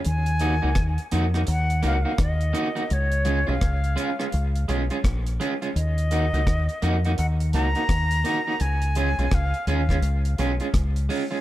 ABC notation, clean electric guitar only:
X:1
M:4/4
L:1/16
Q:"Swing 16ths" 1/4=84
K:Ebm
V:1 name="Clean electric guitar"
z2 [B,EG] [B,EG] z2 [B,EG] [B,EG] z2 [B,EG] [B,EG] z2 [B,EG] [B,EG] | z2 [A,DF] [A,DF] z2 [A,DF] [A,DF] z2 [A,DF] [A,DF] z2 [A,DF] [A,DF] | z2 [B,EG] [B,EG] z2 [B,EG] [B,EG] z2 [B,EG] [B,EG] z2 [B,EG] [B,EG] | z2 [A,DF] [A,DF] z2 [A,DF] [A,DF] z2 [A,DF] [A,DF] z2 [A,DF] [A,DF] |]